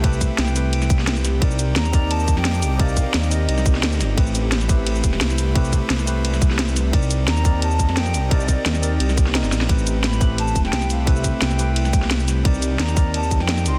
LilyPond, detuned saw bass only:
\new Staff \with { instrumentName = "Detuned saw bass" } { \clef bass \time 4/4 \key c \major \tempo 4 = 174 c,8. r16 c,2. | c,4 ees,4.~ ees,16 f,8. c,8~ | c,8. r16 ees,4 c,4 d,8 g,,8 | a,,2~ a,,8 e,,8 c,4~ |
c,8. r16 c,2. | c,4 ees,4.~ ees,16 f,8. c,8~ | c,8. r16 ees,4 c,4~ c,16 g,,16 bes,,8 | a,,2~ a,,8 e,,8 c,4~ |
c,8. r16 c,2. | c,4 ees,4.~ ees,16 f,8. c,8 | }